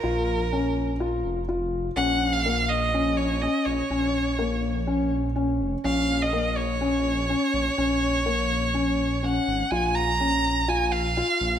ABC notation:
X:1
M:4/4
L:1/16
Q:1/4=124
K:Gblyd
V:1 name="Violin"
B8- B2 z6 | g3 f3 e4 d2 e2 d2- | d8- d2 z6 | f3 e3 d8- d2- |
d12 g4 | a2 b6 a2 f6 |]
V:2 name="Felt piano"
F4 D4 F4 F4 | D4 B,4 D4 D4 | D4 B,4 D4 D4 | D4 B,4 D4 D4 |
D4 B,4 D4 D4 | F4 D4 F4 F4 |]
V:3 name="Detuned saw bass" clef=bass
B,,,8- B,,,2 F,,,6 | B,,,12 z2 B,,,2 | B,,,12- B,,,2 F,,,2 | B,,,12 z2 B,,,2 |
B,,,12 B,,,2 A,,,2 | B,,,12 z2 B,,,2 |]